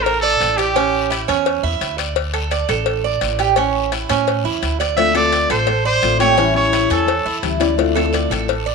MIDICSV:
0, 0, Header, 1, 7, 480
1, 0, Start_track
1, 0, Key_signature, -1, "minor"
1, 0, Tempo, 351494
1, 1030, Time_signature, 4, 2, 24, 8
1, 11948, End_track
2, 0, Start_track
2, 0, Title_t, "Trumpet"
2, 0, Program_c, 0, 56
2, 35, Note_on_c, 0, 70, 98
2, 275, Note_off_c, 0, 70, 0
2, 283, Note_on_c, 0, 69, 103
2, 775, Note_on_c, 0, 67, 92
2, 796, Note_off_c, 0, 69, 0
2, 1741, Note_off_c, 0, 67, 0
2, 6784, Note_on_c, 0, 76, 106
2, 7007, Note_off_c, 0, 76, 0
2, 7048, Note_on_c, 0, 74, 106
2, 7483, Note_off_c, 0, 74, 0
2, 7521, Note_on_c, 0, 72, 95
2, 7960, Note_off_c, 0, 72, 0
2, 8004, Note_on_c, 0, 72, 107
2, 8442, Note_off_c, 0, 72, 0
2, 8471, Note_on_c, 0, 73, 109
2, 8915, Note_off_c, 0, 73, 0
2, 8958, Note_on_c, 0, 73, 97
2, 9399, Note_off_c, 0, 73, 0
2, 9453, Note_on_c, 0, 69, 78
2, 10110, Note_off_c, 0, 69, 0
2, 11948, End_track
3, 0, Start_track
3, 0, Title_t, "Cuban tres"
3, 0, Program_c, 1, 25
3, 0, Note_on_c, 1, 69, 80
3, 298, Note_off_c, 1, 69, 0
3, 314, Note_on_c, 1, 74, 82
3, 777, Note_off_c, 1, 74, 0
3, 791, Note_on_c, 1, 67, 79
3, 1022, Note_off_c, 1, 67, 0
3, 1035, Note_on_c, 1, 61, 86
3, 1497, Note_off_c, 1, 61, 0
3, 1507, Note_on_c, 1, 64, 71
3, 1740, Note_off_c, 1, 64, 0
3, 1751, Note_on_c, 1, 61, 85
3, 2214, Note_off_c, 1, 61, 0
3, 2231, Note_on_c, 1, 64, 83
3, 2694, Note_off_c, 1, 64, 0
3, 2707, Note_on_c, 1, 74, 77
3, 3172, Note_off_c, 1, 74, 0
3, 3190, Note_on_c, 1, 69, 75
3, 3421, Note_off_c, 1, 69, 0
3, 3435, Note_on_c, 1, 74, 74
3, 3663, Note_off_c, 1, 74, 0
3, 3675, Note_on_c, 1, 69, 75
3, 4136, Note_off_c, 1, 69, 0
3, 4156, Note_on_c, 1, 74, 76
3, 4616, Note_off_c, 1, 74, 0
3, 4637, Note_on_c, 1, 67, 82
3, 4864, Note_off_c, 1, 67, 0
3, 4878, Note_on_c, 1, 61, 87
3, 5337, Note_off_c, 1, 61, 0
3, 5354, Note_on_c, 1, 64, 68
3, 5582, Note_off_c, 1, 64, 0
3, 5593, Note_on_c, 1, 61, 87
3, 6054, Note_off_c, 1, 61, 0
3, 6074, Note_on_c, 1, 64, 77
3, 6535, Note_off_c, 1, 64, 0
3, 6554, Note_on_c, 1, 74, 78
3, 7015, Note_off_c, 1, 74, 0
3, 7026, Note_on_c, 1, 69, 79
3, 7258, Note_off_c, 1, 69, 0
3, 7272, Note_on_c, 1, 74, 71
3, 7501, Note_off_c, 1, 74, 0
3, 7519, Note_on_c, 1, 69, 80
3, 7978, Note_off_c, 1, 69, 0
3, 7994, Note_on_c, 1, 74, 79
3, 8455, Note_off_c, 1, 74, 0
3, 8469, Note_on_c, 1, 67, 82
3, 8700, Note_off_c, 1, 67, 0
3, 8705, Note_on_c, 1, 61, 88
3, 9171, Note_off_c, 1, 61, 0
3, 9186, Note_on_c, 1, 64, 77
3, 9419, Note_off_c, 1, 64, 0
3, 9425, Note_on_c, 1, 61, 90
3, 9891, Note_off_c, 1, 61, 0
3, 9909, Note_on_c, 1, 64, 79
3, 10374, Note_off_c, 1, 64, 0
3, 10388, Note_on_c, 1, 74, 81
3, 10853, Note_off_c, 1, 74, 0
3, 10861, Note_on_c, 1, 69, 83
3, 11097, Note_off_c, 1, 69, 0
3, 11110, Note_on_c, 1, 74, 77
3, 11342, Note_off_c, 1, 74, 0
3, 11349, Note_on_c, 1, 69, 83
3, 11814, Note_off_c, 1, 69, 0
3, 11827, Note_on_c, 1, 74, 79
3, 11948, Note_off_c, 1, 74, 0
3, 11948, End_track
4, 0, Start_track
4, 0, Title_t, "Nylon-string guitar"
4, 0, Program_c, 2, 24
4, 6776, Note_on_c, 2, 50, 72
4, 6788, Note_on_c, 2, 57, 85
4, 6798, Note_on_c, 2, 60, 81
4, 6812, Note_on_c, 2, 65, 79
4, 7004, Note_off_c, 2, 65, 0
4, 7011, Note_off_c, 2, 50, 0
4, 7013, Note_off_c, 2, 60, 0
4, 7017, Note_off_c, 2, 57, 0
4, 7020, Note_on_c, 2, 65, 70
4, 7029, Note_on_c, 2, 60, 60
4, 7046, Note_on_c, 2, 57, 54
4, 7733, Note_off_c, 2, 65, 0
4, 7737, Note_off_c, 2, 60, 0
4, 7745, Note_off_c, 2, 57, 0
4, 8219, Note_on_c, 2, 50, 48
4, 8233, Note_on_c, 2, 60, 54
4, 8234, Note_on_c, 2, 57, 53
4, 8249, Note_on_c, 2, 65, 58
4, 8436, Note_off_c, 2, 65, 0
4, 8452, Note_off_c, 2, 50, 0
4, 8453, Note_on_c, 2, 65, 80
4, 8456, Note_off_c, 2, 60, 0
4, 8460, Note_off_c, 2, 57, 0
4, 8473, Note_on_c, 2, 60, 65
4, 8485, Note_on_c, 2, 57, 67
4, 8689, Note_off_c, 2, 65, 0
4, 8690, Note_on_c, 2, 52, 69
4, 8699, Note_off_c, 2, 60, 0
4, 8700, Note_off_c, 2, 57, 0
4, 8706, Note_on_c, 2, 55, 78
4, 8715, Note_on_c, 2, 61, 76
4, 8723, Note_on_c, 2, 64, 82
4, 8921, Note_off_c, 2, 64, 0
4, 8928, Note_off_c, 2, 52, 0
4, 8930, Note_off_c, 2, 61, 0
4, 8936, Note_off_c, 2, 55, 0
4, 8937, Note_on_c, 2, 64, 74
4, 8946, Note_on_c, 2, 61, 66
4, 8956, Note_on_c, 2, 55, 56
4, 9638, Note_off_c, 2, 61, 0
4, 9644, Note_off_c, 2, 55, 0
4, 9652, Note_off_c, 2, 64, 0
4, 10147, Note_on_c, 2, 52, 49
4, 10156, Note_on_c, 2, 55, 56
4, 10169, Note_on_c, 2, 61, 54
4, 10171, Note_on_c, 2, 64, 56
4, 10362, Note_off_c, 2, 64, 0
4, 10372, Note_off_c, 2, 61, 0
4, 10377, Note_off_c, 2, 52, 0
4, 10378, Note_on_c, 2, 64, 79
4, 10382, Note_off_c, 2, 55, 0
4, 10389, Note_on_c, 2, 61, 74
4, 10398, Note_on_c, 2, 55, 65
4, 10611, Note_off_c, 2, 55, 0
4, 10611, Note_on_c, 2, 50, 74
4, 10613, Note_off_c, 2, 64, 0
4, 10616, Note_on_c, 2, 57, 84
4, 10618, Note_off_c, 2, 61, 0
4, 10625, Note_on_c, 2, 60, 82
4, 10629, Note_on_c, 2, 65, 85
4, 10826, Note_off_c, 2, 65, 0
4, 10842, Note_on_c, 2, 65, 68
4, 10847, Note_off_c, 2, 60, 0
4, 10849, Note_off_c, 2, 50, 0
4, 10852, Note_off_c, 2, 57, 0
4, 10864, Note_on_c, 2, 60, 61
4, 10878, Note_on_c, 2, 57, 64
4, 11565, Note_off_c, 2, 65, 0
4, 11576, Note_off_c, 2, 60, 0
4, 11600, Note_off_c, 2, 57, 0
4, 11948, End_track
5, 0, Start_track
5, 0, Title_t, "Upright bass"
5, 0, Program_c, 3, 32
5, 0, Note_on_c, 3, 33, 98
5, 501, Note_off_c, 3, 33, 0
5, 553, Note_on_c, 3, 33, 98
5, 1671, Note_off_c, 3, 33, 0
5, 1755, Note_on_c, 3, 40, 98
5, 2197, Note_off_c, 3, 40, 0
5, 2226, Note_on_c, 3, 40, 77
5, 2449, Note_off_c, 3, 40, 0
5, 2469, Note_on_c, 3, 38, 93
5, 3588, Note_off_c, 3, 38, 0
5, 3670, Note_on_c, 3, 33, 102
5, 4337, Note_off_c, 3, 33, 0
5, 4388, Note_on_c, 3, 33, 94
5, 5508, Note_off_c, 3, 33, 0
5, 5601, Note_on_c, 3, 45, 94
5, 6039, Note_off_c, 3, 45, 0
5, 6063, Note_on_c, 3, 40, 81
5, 6287, Note_off_c, 3, 40, 0
5, 6315, Note_on_c, 3, 38, 90
5, 7431, Note_off_c, 3, 38, 0
5, 7509, Note_on_c, 3, 33, 96
5, 8177, Note_off_c, 3, 33, 0
5, 8228, Note_on_c, 3, 33, 93
5, 9348, Note_off_c, 3, 33, 0
5, 9423, Note_on_c, 3, 40, 99
5, 9871, Note_off_c, 3, 40, 0
5, 9906, Note_on_c, 3, 40, 81
5, 10129, Note_off_c, 3, 40, 0
5, 10143, Note_on_c, 3, 38, 97
5, 11267, Note_off_c, 3, 38, 0
5, 11333, Note_on_c, 3, 33, 102
5, 11948, Note_off_c, 3, 33, 0
5, 11948, End_track
6, 0, Start_track
6, 0, Title_t, "Muted nylon-string guitar strokes"
6, 7750, Note_on_c, 9, 29, 64
6, 7887, Note_off_c, 9, 29, 0
6, 9649, Note_on_c, 9, 29, 62
6, 9785, Note_off_c, 9, 29, 0
6, 11593, Note_on_c, 9, 29, 64
6, 11729, Note_off_c, 9, 29, 0
6, 11948, End_track
7, 0, Start_track
7, 0, Title_t, "Drums"
7, 84, Note_on_c, 9, 74, 74
7, 85, Note_on_c, 9, 56, 97
7, 221, Note_off_c, 9, 74, 0
7, 222, Note_off_c, 9, 56, 0
7, 553, Note_on_c, 9, 73, 73
7, 564, Note_on_c, 9, 56, 69
7, 690, Note_off_c, 9, 73, 0
7, 701, Note_off_c, 9, 56, 0
7, 791, Note_on_c, 9, 73, 75
7, 806, Note_on_c, 9, 56, 70
7, 928, Note_off_c, 9, 73, 0
7, 943, Note_off_c, 9, 56, 0
7, 1038, Note_on_c, 9, 74, 73
7, 1041, Note_on_c, 9, 56, 115
7, 1174, Note_off_c, 9, 74, 0
7, 1178, Note_off_c, 9, 56, 0
7, 1514, Note_on_c, 9, 73, 76
7, 1527, Note_on_c, 9, 56, 72
7, 1650, Note_off_c, 9, 73, 0
7, 1664, Note_off_c, 9, 56, 0
7, 1758, Note_on_c, 9, 73, 74
7, 1762, Note_on_c, 9, 56, 73
7, 1895, Note_off_c, 9, 73, 0
7, 1899, Note_off_c, 9, 56, 0
7, 1983, Note_on_c, 9, 74, 79
7, 1996, Note_on_c, 9, 56, 101
7, 2120, Note_off_c, 9, 74, 0
7, 2132, Note_off_c, 9, 56, 0
7, 2476, Note_on_c, 9, 73, 73
7, 2477, Note_on_c, 9, 56, 70
7, 2612, Note_off_c, 9, 73, 0
7, 2613, Note_off_c, 9, 56, 0
7, 2707, Note_on_c, 9, 73, 77
7, 2719, Note_on_c, 9, 56, 69
7, 2843, Note_off_c, 9, 73, 0
7, 2855, Note_off_c, 9, 56, 0
7, 2943, Note_on_c, 9, 74, 72
7, 2951, Note_on_c, 9, 56, 113
7, 3080, Note_off_c, 9, 74, 0
7, 3087, Note_off_c, 9, 56, 0
7, 3190, Note_on_c, 9, 56, 75
7, 3326, Note_off_c, 9, 56, 0
7, 3426, Note_on_c, 9, 73, 76
7, 3433, Note_on_c, 9, 56, 70
7, 3563, Note_off_c, 9, 73, 0
7, 3569, Note_off_c, 9, 56, 0
7, 3666, Note_on_c, 9, 73, 75
7, 3671, Note_on_c, 9, 56, 73
7, 3803, Note_off_c, 9, 73, 0
7, 3807, Note_off_c, 9, 56, 0
7, 3904, Note_on_c, 9, 74, 77
7, 3905, Note_on_c, 9, 56, 99
7, 4041, Note_off_c, 9, 56, 0
7, 4041, Note_off_c, 9, 74, 0
7, 4387, Note_on_c, 9, 56, 73
7, 4401, Note_on_c, 9, 73, 77
7, 4523, Note_off_c, 9, 56, 0
7, 4537, Note_off_c, 9, 73, 0
7, 4627, Note_on_c, 9, 56, 69
7, 4636, Note_on_c, 9, 73, 72
7, 4763, Note_off_c, 9, 56, 0
7, 4773, Note_off_c, 9, 73, 0
7, 4863, Note_on_c, 9, 56, 114
7, 4879, Note_on_c, 9, 74, 68
7, 5000, Note_off_c, 9, 56, 0
7, 5015, Note_off_c, 9, 74, 0
7, 5353, Note_on_c, 9, 56, 72
7, 5358, Note_on_c, 9, 73, 75
7, 5490, Note_off_c, 9, 56, 0
7, 5495, Note_off_c, 9, 73, 0
7, 5591, Note_on_c, 9, 56, 77
7, 5604, Note_on_c, 9, 73, 72
7, 5727, Note_off_c, 9, 56, 0
7, 5741, Note_off_c, 9, 73, 0
7, 5832, Note_on_c, 9, 74, 76
7, 5840, Note_on_c, 9, 56, 99
7, 5969, Note_off_c, 9, 74, 0
7, 5977, Note_off_c, 9, 56, 0
7, 6316, Note_on_c, 9, 73, 77
7, 6317, Note_on_c, 9, 56, 69
7, 6453, Note_off_c, 9, 73, 0
7, 6454, Note_off_c, 9, 56, 0
7, 6557, Note_on_c, 9, 73, 77
7, 6565, Note_on_c, 9, 56, 75
7, 6694, Note_off_c, 9, 73, 0
7, 6701, Note_off_c, 9, 56, 0
7, 6795, Note_on_c, 9, 56, 111
7, 6803, Note_on_c, 9, 74, 73
7, 6932, Note_off_c, 9, 56, 0
7, 6940, Note_off_c, 9, 74, 0
7, 7035, Note_on_c, 9, 56, 75
7, 7172, Note_off_c, 9, 56, 0
7, 7272, Note_on_c, 9, 56, 74
7, 7287, Note_on_c, 9, 73, 74
7, 7408, Note_off_c, 9, 56, 0
7, 7424, Note_off_c, 9, 73, 0
7, 7510, Note_on_c, 9, 56, 76
7, 7517, Note_on_c, 9, 73, 72
7, 7647, Note_off_c, 9, 56, 0
7, 7653, Note_off_c, 9, 73, 0
7, 7741, Note_on_c, 9, 56, 106
7, 7746, Note_on_c, 9, 74, 76
7, 7878, Note_off_c, 9, 56, 0
7, 7883, Note_off_c, 9, 74, 0
7, 8220, Note_on_c, 9, 73, 73
7, 8230, Note_on_c, 9, 56, 68
7, 8357, Note_off_c, 9, 73, 0
7, 8367, Note_off_c, 9, 56, 0
7, 8467, Note_on_c, 9, 56, 71
7, 8468, Note_on_c, 9, 73, 75
7, 8604, Note_off_c, 9, 56, 0
7, 8605, Note_off_c, 9, 73, 0
7, 8711, Note_on_c, 9, 56, 116
7, 8719, Note_on_c, 9, 74, 69
7, 8848, Note_off_c, 9, 56, 0
7, 8856, Note_off_c, 9, 74, 0
7, 9192, Note_on_c, 9, 73, 76
7, 9193, Note_on_c, 9, 56, 76
7, 9328, Note_off_c, 9, 73, 0
7, 9329, Note_off_c, 9, 56, 0
7, 9423, Note_on_c, 9, 73, 71
7, 9436, Note_on_c, 9, 56, 72
7, 9560, Note_off_c, 9, 73, 0
7, 9573, Note_off_c, 9, 56, 0
7, 9665, Note_on_c, 9, 74, 76
7, 9673, Note_on_c, 9, 56, 102
7, 9801, Note_off_c, 9, 74, 0
7, 9810, Note_off_c, 9, 56, 0
7, 10146, Note_on_c, 9, 73, 74
7, 10147, Note_on_c, 9, 56, 70
7, 10282, Note_off_c, 9, 73, 0
7, 10284, Note_off_c, 9, 56, 0
7, 10378, Note_on_c, 9, 73, 77
7, 10387, Note_on_c, 9, 56, 74
7, 10515, Note_off_c, 9, 73, 0
7, 10523, Note_off_c, 9, 56, 0
7, 10624, Note_on_c, 9, 74, 71
7, 10635, Note_on_c, 9, 56, 116
7, 10761, Note_off_c, 9, 74, 0
7, 10771, Note_off_c, 9, 56, 0
7, 10878, Note_on_c, 9, 56, 73
7, 11015, Note_off_c, 9, 56, 0
7, 11099, Note_on_c, 9, 73, 75
7, 11120, Note_on_c, 9, 56, 76
7, 11235, Note_off_c, 9, 73, 0
7, 11256, Note_off_c, 9, 56, 0
7, 11347, Note_on_c, 9, 73, 69
7, 11366, Note_on_c, 9, 56, 72
7, 11483, Note_off_c, 9, 73, 0
7, 11502, Note_off_c, 9, 56, 0
7, 11585, Note_on_c, 9, 74, 79
7, 11595, Note_on_c, 9, 56, 103
7, 11722, Note_off_c, 9, 74, 0
7, 11731, Note_off_c, 9, 56, 0
7, 11948, End_track
0, 0, End_of_file